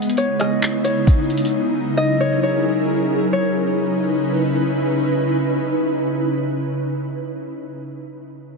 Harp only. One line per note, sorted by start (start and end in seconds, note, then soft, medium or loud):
0.00 0.39 D#5 medium
0.00 0.65 F#5 medium
0.18 0.84 C#5 medium
0.39 1.97 D#5 medium
0.84 2.20 C#5 medium
1.97 3.76 D#5 medium
2.20 2.43 C#5 medium
2.43 3.33 C#5 medium
3.33 5.24 C#5 medium